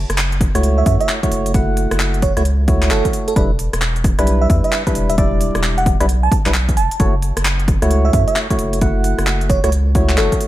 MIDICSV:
0, 0, Header, 1, 5, 480
1, 0, Start_track
1, 0, Tempo, 454545
1, 1629, Time_signature, 4, 2, 24, 8
1, 11062, End_track
2, 0, Start_track
2, 0, Title_t, "FM electric piano"
2, 0, Program_c, 0, 5
2, 821, Note_on_c, 0, 76, 92
2, 878, Note_off_c, 0, 76, 0
2, 909, Note_on_c, 0, 76, 77
2, 1006, Note_off_c, 0, 76, 0
2, 1061, Note_on_c, 0, 76, 94
2, 1173, Note_off_c, 0, 76, 0
2, 2351, Note_on_c, 0, 73, 91
2, 2447, Note_off_c, 0, 73, 0
2, 2503, Note_on_c, 0, 73, 75
2, 2558, Note_off_c, 0, 73, 0
2, 3071, Note_on_c, 0, 69, 98
2, 3236, Note_off_c, 0, 69, 0
2, 3462, Note_on_c, 0, 69, 93
2, 3518, Note_off_c, 0, 69, 0
2, 4662, Note_on_c, 0, 76, 90
2, 4718, Note_off_c, 0, 76, 0
2, 4902, Note_on_c, 0, 76, 92
2, 5014, Note_off_c, 0, 76, 0
2, 5380, Note_on_c, 0, 76, 93
2, 5437, Note_off_c, 0, 76, 0
2, 5470, Note_on_c, 0, 76, 77
2, 5567, Note_off_c, 0, 76, 0
2, 6100, Note_on_c, 0, 78, 94
2, 6213, Note_off_c, 0, 78, 0
2, 6582, Note_on_c, 0, 81, 93
2, 6693, Note_off_c, 0, 81, 0
2, 7148, Note_on_c, 0, 81, 93
2, 7449, Note_off_c, 0, 81, 0
2, 8500, Note_on_c, 0, 76, 92
2, 8557, Note_off_c, 0, 76, 0
2, 8587, Note_on_c, 0, 76, 77
2, 8686, Note_off_c, 0, 76, 0
2, 8739, Note_on_c, 0, 76, 96
2, 8852, Note_off_c, 0, 76, 0
2, 10029, Note_on_c, 0, 73, 93
2, 10126, Note_off_c, 0, 73, 0
2, 10182, Note_on_c, 0, 73, 78
2, 10238, Note_off_c, 0, 73, 0
2, 10750, Note_on_c, 0, 69, 93
2, 10915, Note_off_c, 0, 69, 0
2, 11062, End_track
3, 0, Start_track
3, 0, Title_t, "Synth stab"
3, 0, Program_c, 1, 62
3, 581, Note_on_c, 1, 57, 84
3, 581, Note_on_c, 1, 64, 78
3, 581, Note_on_c, 1, 66, 75
3, 581, Note_on_c, 1, 73, 92
3, 1265, Note_off_c, 1, 57, 0
3, 1265, Note_off_c, 1, 64, 0
3, 1265, Note_off_c, 1, 66, 0
3, 1265, Note_off_c, 1, 73, 0
3, 1300, Note_on_c, 1, 57, 80
3, 1300, Note_on_c, 1, 64, 75
3, 1300, Note_on_c, 1, 66, 73
3, 1301, Note_on_c, 1, 73, 88
3, 1608, Note_off_c, 1, 57, 0
3, 1608, Note_off_c, 1, 64, 0
3, 1608, Note_off_c, 1, 66, 0
3, 1608, Note_off_c, 1, 73, 0
3, 1629, Note_on_c, 1, 57, 82
3, 1629, Note_on_c, 1, 64, 71
3, 1629, Note_on_c, 1, 66, 74
3, 1630, Note_on_c, 1, 78, 90
3, 2464, Note_off_c, 1, 57, 0
3, 2464, Note_off_c, 1, 64, 0
3, 2464, Note_off_c, 1, 66, 0
3, 2465, Note_off_c, 1, 78, 0
3, 2501, Note_on_c, 1, 57, 101
3, 2501, Note_on_c, 1, 64, 89
3, 2501, Note_on_c, 1, 73, 111
3, 2502, Note_on_c, 1, 66, 90
3, 2560, Note_off_c, 1, 57, 0
3, 2560, Note_off_c, 1, 64, 0
3, 2560, Note_off_c, 1, 66, 0
3, 2560, Note_off_c, 1, 73, 0
3, 2828, Note_on_c, 1, 57, 92
3, 2828, Note_on_c, 1, 64, 84
3, 2828, Note_on_c, 1, 66, 82
3, 2829, Note_on_c, 1, 73, 101
3, 3527, Note_off_c, 1, 64, 0
3, 3528, Note_off_c, 1, 57, 0
3, 3528, Note_off_c, 1, 66, 0
3, 3528, Note_off_c, 1, 73, 0
3, 3549, Note_on_c, 1, 55, 81
3, 3549, Note_on_c, 1, 62, 75
3, 3549, Note_on_c, 1, 64, 77
3, 3550, Note_on_c, 1, 71, 91
3, 3707, Note_off_c, 1, 55, 0
3, 3707, Note_off_c, 1, 62, 0
3, 3707, Note_off_c, 1, 64, 0
3, 3707, Note_off_c, 1, 71, 0
3, 4420, Note_on_c, 1, 62, 76
3, 4420, Note_on_c, 1, 64, 76
3, 4420, Note_on_c, 1, 71, 90
3, 4421, Note_on_c, 1, 55, 84
3, 5104, Note_off_c, 1, 55, 0
3, 5104, Note_off_c, 1, 62, 0
3, 5104, Note_off_c, 1, 64, 0
3, 5104, Note_off_c, 1, 71, 0
3, 5140, Note_on_c, 1, 55, 80
3, 5140, Note_on_c, 1, 62, 73
3, 5140, Note_on_c, 1, 71, 87
3, 5141, Note_on_c, 1, 64, 74
3, 5448, Note_off_c, 1, 55, 0
3, 5448, Note_off_c, 1, 62, 0
3, 5448, Note_off_c, 1, 64, 0
3, 5448, Note_off_c, 1, 71, 0
3, 5468, Note_on_c, 1, 62, 76
3, 5468, Note_on_c, 1, 64, 74
3, 5468, Note_on_c, 1, 74, 89
3, 5469, Note_on_c, 1, 55, 84
3, 6304, Note_off_c, 1, 55, 0
3, 6304, Note_off_c, 1, 62, 0
3, 6304, Note_off_c, 1, 64, 0
3, 6304, Note_off_c, 1, 74, 0
3, 6340, Note_on_c, 1, 62, 93
3, 6341, Note_on_c, 1, 55, 97
3, 6341, Note_on_c, 1, 64, 92
3, 6341, Note_on_c, 1, 71, 112
3, 6400, Note_off_c, 1, 55, 0
3, 6400, Note_off_c, 1, 62, 0
3, 6400, Note_off_c, 1, 64, 0
3, 6400, Note_off_c, 1, 71, 0
3, 6820, Note_on_c, 1, 64, 73
3, 6820, Note_on_c, 1, 71, 91
3, 6821, Note_on_c, 1, 55, 81
3, 6821, Note_on_c, 1, 62, 75
3, 6879, Note_off_c, 1, 64, 0
3, 6880, Note_off_c, 1, 55, 0
3, 6880, Note_off_c, 1, 62, 0
3, 6880, Note_off_c, 1, 71, 0
3, 7390, Note_on_c, 1, 57, 83
3, 7390, Note_on_c, 1, 64, 74
3, 7390, Note_on_c, 1, 66, 73
3, 7390, Note_on_c, 1, 73, 91
3, 7547, Note_off_c, 1, 57, 0
3, 7547, Note_off_c, 1, 64, 0
3, 7547, Note_off_c, 1, 66, 0
3, 7547, Note_off_c, 1, 73, 0
3, 8260, Note_on_c, 1, 66, 76
3, 8260, Note_on_c, 1, 73, 92
3, 8261, Note_on_c, 1, 57, 87
3, 8261, Note_on_c, 1, 64, 77
3, 8944, Note_off_c, 1, 66, 0
3, 8944, Note_off_c, 1, 73, 0
3, 8945, Note_off_c, 1, 57, 0
3, 8945, Note_off_c, 1, 64, 0
3, 8980, Note_on_c, 1, 64, 73
3, 8980, Note_on_c, 1, 66, 72
3, 8980, Note_on_c, 1, 73, 90
3, 8981, Note_on_c, 1, 57, 81
3, 9287, Note_off_c, 1, 64, 0
3, 9288, Note_off_c, 1, 57, 0
3, 9288, Note_off_c, 1, 66, 0
3, 9288, Note_off_c, 1, 73, 0
3, 9309, Note_on_c, 1, 57, 78
3, 9309, Note_on_c, 1, 78, 91
3, 9310, Note_on_c, 1, 64, 74
3, 9310, Note_on_c, 1, 66, 74
3, 10144, Note_off_c, 1, 78, 0
3, 10145, Note_off_c, 1, 57, 0
3, 10145, Note_off_c, 1, 64, 0
3, 10145, Note_off_c, 1, 66, 0
3, 10180, Note_on_c, 1, 57, 96
3, 10180, Note_on_c, 1, 66, 91
3, 10180, Note_on_c, 1, 73, 109
3, 10181, Note_on_c, 1, 64, 92
3, 10239, Note_off_c, 1, 73, 0
3, 10240, Note_off_c, 1, 57, 0
3, 10240, Note_off_c, 1, 64, 0
3, 10240, Note_off_c, 1, 66, 0
3, 10509, Note_on_c, 1, 73, 98
3, 10510, Note_on_c, 1, 57, 88
3, 10510, Note_on_c, 1, 64, 84
3, 10510, Note_on_c, 1, 66, 85
3, 11062, Note_off_c, 1, 57, 0
3, 11062, Note_off_c, 1, 64, 0
3, 11062, Note_off_c, 1, 66, 0
3, 11062, Note_off_c, 1, 73, 0
3, 11062, End_track
4, 0, Start_track
4, 0, Title_t, "Sub bass"
4, 0, Program_c, 2, 38
4, 100, Note_on_c, 2, 30, 86
4, 533, Note_off_c, 2, 30, 0
4, 581, Note_on_c, 2, 37, 101
4, 882, Note_off_c, 2, 37, 0
4, 910, Note_on_c, 2, 42, 105
4, 1032, Note_off_c, 2, 42, 0
4, 1388, Note_on_c, 2, 30, 99
4, 1973, Note_off_c, 2, 30, 0
4, 2021, Note_on_c, 2, 30, 92
4, 2454, Note_off_c, 2, 30, 0
4, 2501, Note_on_c, 2, 37, 102
4, 3069, Note_on_c, 2, 30, 94
4, 3085, Note_off_c, 2, 37, 0
4, 3191, Note_off_c, 2, 30, 0
4, 3550, Note_on_c, 2, 28, 97
4, 3894, Note_off_c, 2, 28, 0
4, 3941, Note_on_c, 2, 28, 88
4, 4374, Note_off_c, 2, 28, 0
4, 4421, Note_on_c, 2, 35, 102
4, 4722, Note_off_c, 2, 35, 0
4, 4750, Note_on_c, 2, 40, 106
4, 4872, Note_off_c, 2, 40, 0
4, 5230, Note_on_c, 2, 28, 99
4, 5814, Note_off_c, 2, 28, 0
4, 5861, Note_on_c, 2, 28, 90
4, 6294, Note_off_c, 2, 28, 0
4, 6342, Note_on_c, 2, 35, 100
4, 6643, Note_off_c, 2, 35, 0
4, 6822, Note_on_c, 2, 35, 79
4, 7150, Note_on_c, 2, 28, 91
4, 7166, Note_off_c, 2, 35, 0
4, 7272, Note_off_c, 2, 28, 0
4, 7389, Note_on_c, 2, 30, 99
4, 7734, Note_off_c, 2, 30, 0
4, 7782, Note_on_c, 2, 30, 87
4, 8214, Note_off_c, 2, 30, 0
4, 8262, Note_on_c, 2, 37, 101
4, 8562, Note_off_c, 2, 37, 0
4, 8589, Note_on_c, 2, 42, 107
4, 8711, Note_off_c, 2, 42, 0
4, 9069, Note_on_c, 2, 30, 104
4, 9654, Note_off_c, 2, 30, 0
4, 9700, Note_on_c, 2, 30, 89
4, 10133, Note_off_c, 2, 30, 0
4, 10179, Note_on_c, 2, 37, 103
4, 10749, Note_on_c, 2, 30, 99
4, 10765, Note_off_c, 2, 37, 0
4, 10872, Note_off_c, 2, 30, 0
4, 11062, End_track
5, 0, Start_track
5, 0, Title_t, "Drums"
5, 103, Note_on_c, 9, 37, 68
5, 103, Note_on_c, 9, 42, 66
5, 190, Note_on_c, 9, 39, 127
5, 208, Note_off_c, 9, 37, 0
5, 208, Note_off_c, 9, 42, 0
5, 295, Note_off_c, 9, 39, 0
5, 341, Note_on_c, 9, 42, 38
5, 430, Note_on_c, 9, 36, 107
5, 431, Note_on_c, 9, 37, 34
5, 431, Note_on_c, 9, 46, 117
5, 447, Note_off_c, 9, 42, 0
5, 535, Note_off_c, 9, 36, 0
5, 536, Note_off_c, 9, 37, 0
5, 536, Note_off_c, 9, 46, 0
5, 582, Note_on_c, 9, 37, 59
5, 582, Note_on_c, 9, 42, 71
5, 670, Note_off_c, 9, 42, 0
5, 670, Note_on_c, 9, 42, 70
5, 687, Note_off_c, 9, 37, 0
5, 776, Note_off_c, 9, 42, 0
5, 909, Note_on_c, 9, 46, 119
5, 910, Note_on_c, 9, 36, 114
5, 1014, Note_off_c, 9, 46, 0
5, 1015, Note_off_c, 9, 36, 0
5, 1062, Note_on_c, 9, 42, 37
5, 1149, Note_on_c, 9, 39, 122
5, 1168, Note_off_c, 9, 42, 0
5, 1255, Note_off_c, 9, 39, 0
5, 1301, Note_on_c, 9, 36, 63
5, 1302, Note_on_c, 9, 42, 53
5, 1389, Note_on_c, 9, 46, 112
5, 1407, Note_off_c, 9, 36, 0
5, 1407, Note_off_c, 9, 42, 0
5, 1495, Note_off_c, 9, 46, 0
5, 1541, Note_on_c, 9, 42, 65
5, 1629, Note_off_c, 9, 42, 0
5, 1629, Note_on_c, 9, 42, 66
5, 1630, Note_on_c, 9, 36, 125
5, 1735, Note_off_c, 9, 36, 0
5, 1735, Note_off_c, 9, 42, 0
5, 1868, Note_on_c, 9, 46, 111
5, 1974, Note_off_c, 9, 46, 0
5, 2020, Note_on_c, 9, 37, 73
5, 2020, Note_on_c, 9, 46, 62
5, 2109, Note_on_c, 9, 39, 127
5, 2126, Note_off_c, 9, 37, 0
5, 2126, Note_off_c, 9, 46, 0
5, 2215, Note_off_c, 9, 39, 0
5, 2261, Note_on_c, 9, 42, 37
5, 2348, Note_on_c, 9, 46, 114
5, 2350, Note_on_c, 9, 36, 110
5, 2367, Note_off_c, 9, 42, 0
5, 2454, Note_off_c, 9, 46, 0
5, 2455, Note_off_c, 9, 36, 0
5, 2501, Note_on_c, 9, 37, 61
5, 2501, Note_on_c, 9, 42, 67
5, 2590, Note_off_c, 9, 42, 0
5, 2590, Note_on_c, 9, 42, 67
5, 2607, Note_off_c, 9, 37, 0
5, 2695, Note_off_c, 9, 42, 0
5, 2829, Note_on_c, 9, 46, 108
5, 2830, Note_on_c, 9, 36, 116
5, 2934, Note_off_c, 9, 46, 0
5, 2935, Note_off_c, 9, 36, 0
5, 2982, Note_on_c, 9, 39, 64
5, 2982, Note_on_c, 9, 42, 36
5, 3070, Note_off_c, 9, 39, 0
5, 3070, Note_on_c, 9, 39, 125
5, 3087, Note_off_c, 9, 42, 0
5, 3176, Note_off_c, 9, 39, 0
5, 3221, Note_on_c, 9, 36, 67
5, 3221, Note_on_c, 9, 42, 54
5, 3309, Note_on_c, 9, 46, 104
5, 3327, Note_off_c, 9, 36, 0
5, 3327, Note_off_c, 9, 42, 0
5, 3414, Note_off_c, 9, 46, 0
5, 3461, Note_on_c, 9, 42, 64
5, 3550, Note_off_c, 9, 42, 0
5, 3550, Note_on_c, 9, 36, 127
5, 3550, Note_on_c, 9, 42, 65
5, 3655, Note_off_c, 9, 36, 0
5, 3655, Note_off_c, 9, 42, 0
5, 3791, Note_on_c, 9, 46, 107
5, 3896, Note_off_c, 9, 46, 0
5, 3942, Note_on_c, 9, 37, 69
5, 3942, Note_on_c, 9, 42, 66
5, 4031, Note_on_c, 9, 39, 127
5, 4048, Note_off_c, 9, 37, 0
5, 4048, Note_off_c, 9, 42, 0
5, 4136, Note_off_c, 9, 39, 0
5, 4182, Note_on_c, 9, 42, 35
5, 4270, Note_on_c, 9, 36, 114
5, 4270, Note_on_c, 9, 37, 33
5, 4270, Note_on_c, 9, 46, 106
5, 4288, Note_off_c, 9, 42, 0
5, 4375, Note_off_c, 9, 36, 0
5, 4375, Note_off_c, 9, 37, 0
5, 4375, Note_off_c, 9, 46, 0
5, 4421, Note_on_c, 9, 37, 61
5, 4421, Note_on_c, 9, 42, 66
5, 4509, Note_off_c, 9, 42, 0
5, 4509, Note_on_c, 9, 42, 66
5, 4527, Note_off_c, 9, 37, 0
5, 4615, Note_off_c, 9, 42, 0
5, 4749, Note_on_c, 9, 36, 118
5, 4749, Note_on_c, 9, 46, 104
5, 4855, Note_off_c, 9, 36, 0
5, 4855, Note_off_c, 9, 46, 0
5, 4902, Note_on_c, 9, 42, 35
5, 4989, Note_on_c, 9, 39, 123
5, 5008, Note_off_c, 9, 42, 0
5, 5095, Note_off_c, 9, 39, 0
5, 5141, Note_on_c, 9, 36, 65
5, 5141, Note_on_c, 9, 42, 52
5, 5229, Note_on_c, 9, 46, 103
5, 5246, Note_off_c, 9, 42, 0
5, 5247, Note_off_c, 9, 36, 0
5, 5334, Note_off_c, 9, 46, 0
5, 5381, Note_on_c, 9, 42, 65
5, 5469, Note_off_c, 9, 42, 0
5, 5469, Note_on_c, 9, 36, 123
5, 5469, Note_on_c, 9, 42, 65
5, 5575, Note_off_c, 9, 36, 0
5, 5575, Note_off_c, 9, 42, 0
5, 5709, Note_on_c, 9, 46, 107
5, 5815, Note_off_c, 9, 46, 0
5, 5860, Note_on_c, 9, 37, 67
5, 5860, Note_on_c, 9, 46, 60
5, 5950, Note_on_c, 9, 39, 127
5, 5966, Note_off_c, 9, 37, 0
5, 5966, Note_off_c, 9, 46, 0
5, 6055, Note_off_c, 9, 39, 0
5, 6102, Note_on_c, 9, 42, 36
5, 6190, Note_on_c, 9, 36, 111
5, 6190, Note_on_c, 9, 46, 101
5, 6208, Note_off_c, 9, 42, 0
5, 6295, Note_off_c, 9, 36, 0
5, 6295, Note_off_c, 9, 46, 0
5, 6341, Note_on_c, 9, 37, 58
5, 6341, Note_on_c, 9, 42, 64
5, 6430, Note_off_c, 9, 42, 0
5, 6430, Note_on_c, 9, 42, 66
5, 6447, Note_off_c, 9, 37, 0
5, 6536, Note_off_c, 9, 42, 0
5, 6669, Note_on_c, 9, 36, 113
5, 6671, Note_on_c, 9, 46, 105
5, 6775, Note_off_c, 9, 36, 0
5, 6776, Note_off_c, 9, 46, 0
5, 6822, Note_on_c, 9, 39, 64
5, 6822, Note_on_c, 9, 42, 36
5, 6908, Note_off_c, 9, 39, 0
5, 6908, Note_on_c, 9, 39, 122
5, 6927, Note_off_c, 9, 42, 0
5, 7014, Note_off_c, 9, 39, 0
5, 7061, Note_on_c, 9, 36, 65
5, 7061, Note_on_c, 9, 42, 53
5, 7149, Note_on_c, 9, 46, 102
5, 7166, Note_off_c, 9, 42, 0
5, 7167, Note_off_c, 9, 36, 0
5, 7254, Note_off_c, 9, 46, 0
5, 7301, Note_on_c, 9, 42, 64
5, 7389, Note_off_c, 9, 42, 0
5, 7389, Note_on_c, 9, 42, 65
5, 7390, Note_on_c, 9, 36, 118
5, 7494, Note_off_c, 9, 42, 0
5, 7495, Note_off_c, 9, 36, 0
5, 7629, Note_on_c, 9, 46, 100
5, 7734, Note_off_c, 9, 46, 0
5, 7780, Note_on_c, 9, 37, 66
5, 7780, Note_on_c, 9, 42, 70
5, 7869, Note_on_c, 9, 39, 123
5, 7886, Note_off_c, 9, 37, 0
5, 7886, Note_off_c, 9, 42, 0
5, 7974, Note_off_c, 9, 39, 0
5, 8021, Note_on_c, 9, 42, 37
5, 8109, Note_on_c, 9, 36, 105
5, 8109, Note_on_c, 9, 37, 31
5, 8109, Note_on_c, 9, 46, 105
5, 8126, Note_off_c, 9, 42, 0
5, 8214, Note_off_c, 9, 37, 0
5, 8214, Note_off_c, 9, 46, 0
5, 8215, Note_off_c, 9, 36, 0
5, 8260, Note_on_c, 9, 37, 54
5, 8260, Note_on_c, 9, 42, 68
5, 8349, Note_off_c, 9, 42, 0
5, 8349, Note_on_c, 9, 42, 70
5, 8366, Note_off_c, 9, 37, 0
5, 8454, Note_off_c, 9, 42, 0
5, 8588, Note_on_c, 9, 46, 108
5, 8589, Note_on_c, 9, 36, 109
5, 8694, Note_off_c, 9, 46, 0
5, 8695, Note_off_c, 9, 36, 0
5, 8740, Note_on_c, 9, 42, 38
5, 8828, Note_on_c, 9, 39, 121
5, 8845, Note_off_c, 9, 42, 0
5, 8933, Note_off_c, 9, 39, 0
5, 8980, Note_on_c, 9, 42, 54
5, 8981, Note_on_c, 9, 36, 65
5, 9068, Note_on_c, 9, 46, 105
5, 9086, Note_off_c, 9, 36, 0
5, 9086, Note_off_c, 9, 42, 0
5, 9173, Note_off_c, 9, 46, 0
5, 9219, Note_on_c, 9, 42, 66
5, 9307, Note_off_c, 9, 42, 0
5, 9307, Note_on_c, 9, 42, 70
5, 9309, Note_on_c, 9, 36, 117
5, 9413, Note_off_c, 9, 42, 0
5, 9414, Note_off_c, 9, 36, 0
5, 9547, Note_on_c, 9, 46, 108
5, 9652, Note_off_c, 9, 46, 0
5, 9699, Note_on_c, 9, 37, 63
5, 9699, Note_on_c, 9, 46, 63
5, 9787, Note_on_c, 9, 39, 121
5, 9805, Note_off_c, 9, 37, 0
5, 9805, Note_off_c, 9, 46, 0
5, 9893, Note_off_c, 9, 39, 0
5, 9940, Note_on_c, 9, 42, 38
5, 10028, Note_on_c, 9, 36, 102
5, 10028, Note_on_c, 9, 46, 110
5, 10045, Note_off_c, 9, 42, 0
5, 10133, Note_off_c, 9, 46, 0
5, 10134, Note_off_c, 9, 36, 0
5, 10178, Note_on_c, 9, 37, 57
5, 10178, Note_on_c, 9, 42, 72
5, 10267, Note_off_c, 9, 42, 0
5, 10267, Note_on_c, 9, 42, 70
5, 10284, Note_off_c, 9, 37, 0
5, 10372, Note_off_c, 9, 42, 0
5, 10507, Note_on_c, 9, 46, 110
5, 10508, Note_on_c, 9, 36, 104
5, 10612, Note_off_c, 9, 46, 0
5, 10614, Note_off_c, 9, 36, 0
5, 10659, Note_on_c, 9, 39, 61
5, 10659, Note_on_c, 9, 42, 38
5, 10747, Note_off_c, 9, 39, 0
5, 10747, Note_on_c, 9, 39, 119
5, 10764, Note_off_c, 9, 42, 0
5, 10853, Note_off_c, 9, 39, 0
5, 10900, Note_on_c, 9, 36, 61
5, 10900, Note_on_c, 9, 42, 56
5, 10988, Note_on_c, 9, 46, 109
5, 11005, Note_off_c, 9, 36, 0
5, 11006, Note_off_c, 9, 42, 0
5, 11062, Note_off_c, 9, 46, 0
5, 11062, End_track
0, 0, End_of_file